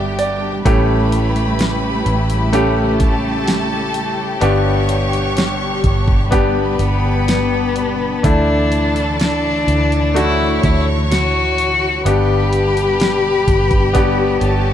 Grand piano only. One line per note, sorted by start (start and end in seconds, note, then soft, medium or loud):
0.00 0.55 B3 medium
0.00 0.55 D4 medium
0.00 0.56 A4 medium
0.00 0.14 D5 medium
0.00 0.67 E5 medium
0.00 0.66 F#5 medium
0.00 0.67 G5 medium
0.19 0.62 D5 medium
0.65 2.02 A2 medium
0.65 2.44 A3 medium
0.65 2.44 C#4 medium
0.65 2.45 G4 medium
2.53 4.32 A3 medium
2.53 4.33 C#4 medium
2.53 4.33 G4 medium
4.41 5.80 G2 medium
4.41 6.21 B3 medium
4.41 6.22 D4 medium
4.41 6.22 G4 medium
6.31 8.14 B3 medium
6.31 8.14 D4 medium
6.31 8.15 G4 medium
8.23 9.63 D3 medium
8.23 10.05 A3 medium
8.23 10.05 D4 medium
8.23 10.06 E4 medium
10.14 11.95 A3 medium
10.14 11.96 D4 medium
10.14 11.96 F#4 medium
12.05 13.43 G2 medium
12.05 13.85 B3 medium
12.05 13.85 D4 medium
12.05 13.85 G4 medium
13.93 14.73 B3 medium
13.93 14.73 D4 medium
13.93 14.73 G4 loud